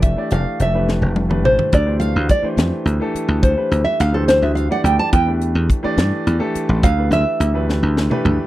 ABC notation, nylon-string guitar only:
X:1
M:6/8
L:1/16
Q:3/8=71
K:Ddor
V:1 name="Nylon-string guitar"
e2 f2 e2 z4 c2 | d2 f2 d2 z6 | c3 e f A c e f ^f g a | g2 z8 z2 |
f2 e4 z6 |]